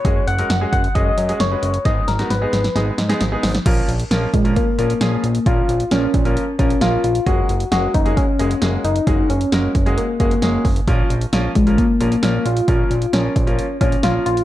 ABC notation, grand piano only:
X:1
M:4/4
L:1/16
Q:1/4=133
K:A#phr
V:1 name="Grand piano"
[G,CFG]2 z [G,CFA] z [G,CFG]2 z [G,CFG]2 z [G,CFG] z [G,CFB]2 z | [G,B,DG]2 z [G,B,DF] z [G,B,DG]2 z [G,B,DG]2 z [G,B,DG] z [G,B,DG]2 z | [E,A,CEA]2 z2 [E,A,CEA]2 z [E,A,CEA]2 z [E,A,CEA] z [E,A,CEG]2 z2 | [E,A,CEA]2 z2 [E,A,CEA]2 z [E,A,CEA]2 z [E,A,CEA] z [E,A,CEA]2 z2 |
[G,A,CFG]2 z2 [G,A,CFG]2 z [G,A,CFG]2 z [G,A,CFG] z [G,A,CFG]2 z2 | [G,A,CFG]2 z2 [G,A,CFA]2 z [G,A,CFG]2 z [G,A,CFG] z [G,A,CFG]2 z2 | [E,A,CEA]2 z2 [E,A,CEA]2 z [E,A,CEA]2 z [E,A,CEA] z [E,A,CEA]2 z2 | [E,A,CEA]2 z2 [E,A,CEA]2 z [E,A,CEA]2 z [E,A,CEA] z [E,A,CEA]2 z2 |]